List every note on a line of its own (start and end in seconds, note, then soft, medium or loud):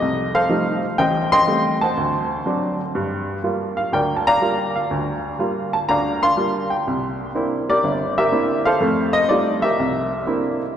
0.00 0.43 C2 medium
0.00 0.79 G4 medium
0.00 0.33 A4 medium
0.00 0.31 D#5 medium
0.35 0.95 A4 medium
0.35 0.95 C5 medium
0.35 1.01 F5 medium
0.49 0.84 F3 medium
0.49 0.84 G3 soft
0.49 0.84 A3 medium
0.49 0.84 D#4 medium
0.98 1.41 A1 medium
0.98 1.82 C5 medium
0.98 1.32 D#5 medium
0.98 1.29 G5 medium
1.32 1.93 D#5 medium
1.32 1.93 G5 medium
1.32 1.77 C6 loud
1.47 1.81 G3 medium
1.47 1.82 A3 soft
1.47 1.82 C4 medium
1.81 2.75 C5 medium
1.81 2.75 F#5 medium
1.81 2.74 A5 medium
1.97 2.39 D2 medium
2.46 2.80 F#3 medium
2.46 2.80 C4 soft
2.46 2.80 D4 medium
2.95 3.37 G2 medium
3.44 3.78 G3 medium
3.44 3.78 A#3 soft
3.44 3.78 F4 medium
3.77 3.93 F5 medium
3.92 4.34 D2 medium
3.92 4.86 A#4 medium
3.92 4.26 D5 medium
3.92 4.14 G5 medium
4.17 4.25 A5 medium
4.27 5.20 D5 medium
4.27 4.74 F5 medium
4.27 4.71 A#5 loud
4.41 4.75 G3 medium
4.41 4.76 A#3 soft
4.41 4.76 F4 medium
4.75 4.89 F5 medium
4.91 5.32 D2 medium
5.39 5.73 G3 medium
5.39 5.74 A#3 soft
5.39 5.73 F4 medium
5.73 5.78 A5 medium
5.89 6.30 D2 medium
5.89 6.30 D3 medium
5.89 6.82 D5 medium
5.89 6.22 F5 medium
5.89 6.22 A#5 medium
6.23 6.82 F5 medium
6.23 6.72 C6 loud
6.37 6.71 G3 medium
6.37 6.71 A#3 medium
6.37 6.71 F4 medium
6.70 6.84 G5 medium
6.87 7.29 C2 medium
7.35 7.69 A#3 medium
7.35 7.69 C4 soft
7.35 7.69 D4 soft
7.35 7.69 E4 medium
7.70 8.17 G4 medium
7.70 8.17 A#4 medium
7.70 8.14 D5 medium
7.84 8.26 G1 medium
8.18 8.78 G4 medium
8.18 8.78 A#4 medium
8.18 8.67 E5 medium
8.32 8.66 A#3 medium
8.32 8.66 C4 medium
8.32 8.67 D4 medium
8.32 8.67 E4 medium
8.65 9.59 A4 medium
8.65 9.59 C5 medium
8.65 9.15 F5 medium
8.81 9.23 F2 medium
8.81 9.23 A3 medium
9.13 9.30 D#5 loud
9.29 9.64 G3 medium
9.29 9.64 A3 soft
9.29 9.64 D#4 soft
9.29 9.64 F4 medium
9.29 9.63 D5 medium
9.62 10.57 G4 medium
9.62 10.57 A#4 medium
9.62 10.56 E5 medium
9.79 10.21 C2 medium
10.27 10.61 A#3 medium
10.27 10.61 C4 soft
10.27 10.62 D4 soft
10.27 10.62 E4 medium